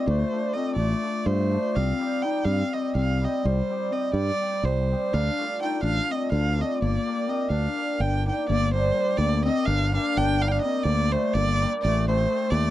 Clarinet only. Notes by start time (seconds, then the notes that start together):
0.10 A3
0.56 C4
0.78 A3
1.28 A3
1.78 C4
2.25 D#4
2.46 C4
2.73 C4
2.95 C4
3.23 C4
3.44 G3
3.92 C4
4.13 G3
4.62 G3
5.13 D4
5.60 D#4
5.83 D4
6.11 C4
6.32 D4
6.60 C4
6.81 A#3
7.29 C4
7.50 D4
8.00 D4
8.27 D#4
8.49 A#3
8.74 G3
9.17 A#3
9.45 C4
9.67 D4
9.94 D4
10.15 D4
10.41 D4
10.47 D#4
10.52 D4
10.64 C4
10.84 A#3
11.13 A3
11.36 A#3
11.84 A3
12.08 A3
12.50 A3